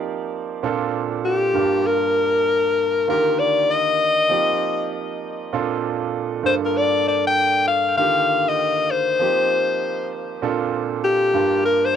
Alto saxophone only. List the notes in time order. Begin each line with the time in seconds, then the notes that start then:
1.25 G4
1.86 A#4
3.10 A#4
3.39 D5
3.71 D#5
6.46 C5
6.65 A#4
6.77 D5
7.08 D5
7.27 G5
7.68 F5
7.98 F5
8.48 D#5
8.91 C5
11.04 G4
11.65 A#4
11.85 C5